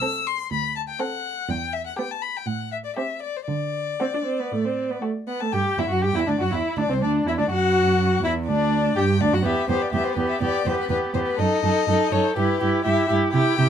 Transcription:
Already playing: violin E6
0.01 viola C4, violin A4
0.27 violin C6
0.51 cello D2, violin B5
0.76 violin A5
0.89 violin G5
0.99 viola C4, violin A4 F#5
1.48 cello E2, violin G5
1.73 violin E5
1.86 violin F#5
1.97 viola B3, violin G4 G5
2.11 violin A5
2.22 violin B5
2.36 violin G5
2.46 cello A2, violin F#5
2.72 violin E5
2.85 violin D5
2.96 viola C4, violin G4 E5
3.23 violin D5
3.36 violin C5
3.47 cello D3, violin D5
4.00 viola C4, violin F#4
4.14 viola D4
4.25 viola C4
4.39 viola B3
4.52 cello A2, viola A3
4.64 viola C4
4.90 viola B3
5.01 viola A3, violin F#4
5.27 viola B3, violin F#5
5.40 viola A3, violin A5
5.52 cello G2, violin G4 G5, viola G4
5.78 cello E2, viola E4, violin E4 E5
5.89 cello F#2, violin F#4 F#5, viola F#4
6.02 cello G2, violin G4 G5, viola G4
6.15 cello E2, violin E4, viola E4
6.19 violin E5
6.27 cello D2, violin D4 D5, viola D4
6.40 cello F#2, violin F#4 F#5, viola F#4
6.52 cello E2, viola E4, violin E4 E5
6.78 cello D2, violin D4 D5, viola D4
6.89 cello C2, violin C4, viola C4
6.93 violin C5
7.01 cello D2, viola D4, violin D4 D5
7.26 cello E2, violin E4 E5, viola E4
7.37 cello D2, viola D4, violin D4 D5
7.50 cello F#2, violin F#4 F#5, viola F#4
8.24 cello E2, violin E4 E5, viola E4
8.47 cello D2, viola D4, violin D4 D5
8.96 cello G2, violin G4 G5, viola G4
9.21 cello D2, viola D4, violin D4 D5
9.33 cello F#2, viola F#4, violin F#4 F#5
9.45 cello E2, viola B3, violin G4 E5
9.69 cello E2, viola B3, violin G4 C5
9.82 violin D5
9.92 cello E2, viola B3, violin G4 E5
10.04 violin C5
10.14 cello E2, viola B3, violin G4 B4
10.29 violin E5
10.41 cello E2, viola B3, violin G4 D5
10.66 cello E2, viola B3, violin G4 C5
10.80 violin B4
10.89 cello E2, viola B3, violin G4 B4
11.14 cello E2, viola B3, violin G4 C5
11.26 violin B4
11.39 cello F#2, viola D#4, violin A4 D#5
11.63 cello F#2, viola D#4, violin A4
11.88 cello F#2, viola D#4, violin A4
12.12 cello F#2, viola D#4, violin A4 C#5
12.36 cello G2, viola E4, violin G4 B4
12.60 cello G2, viola E4, violin G4
12.84 cello G2, viola E4, violin G4 E5
13.09 cello G2, viola E4, violin G4
13.33 cello C3, viola E4, violin G4 G5
13.57 cello C3, viola E4, violin G4

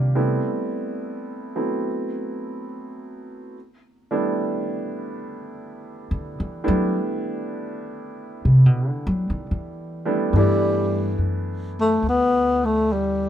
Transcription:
Already playing: upright bass C3, upright piano D#3 G3 A#3 D4 F4 G4
0.15 upright piano G3 A3 B3 C4 E4
1.55 upright piano F#3 A3 B3 C4 E4
4.11 upright piano G3 A3 B3 D4 E4
6.11 upright bass D3
6.40 upright bass E3
6.64 upright piano G3 A3 B3 D4 E4
6.68 upright bass F#3
8.45 upright bass C3
8.66 upright bass B2
8.88 upright bass D3
9.07 upright bass F#3
9.30 upright bass D#3
9.51 upright bass E3
10.05 upright piano G3 A3 B3 D4 E4
10.33 upright bass G2, upright piano E3 A3 B3 D4
10.37 tenor saxophone G3, upright piano E4
11.18 upright bass F#2
11.80 tenor saxophone A3
12.03 upright bass D2
12.09 tenor saxophone B3
12.65 tenor saxophone A3
12.92 tenor saxophone G3

